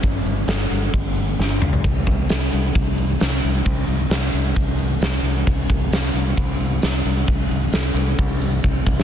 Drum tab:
HH |o-o-o-o-o-o-----|o-o-o-o-o-o-o-o-|o-o-o-o-o-o-o-o-|o-o-o-o-o-o-o-o-|
SD |----o-------o---|----o-------o---|----o-------o---|----o-------o---|
T2 |--------------o-|----------------|----------------|----------------|
FT |---------------o|----------------|----------------|----------------|
BD |o-------o-------|o-o-----o-------|o-------o-------|o-o-----o-------|

HH |o-o-o-o-o-o-----|
SD |----o----------o|
T2 |----------------|
FT |----------------|
BD |o-------o---o-o-|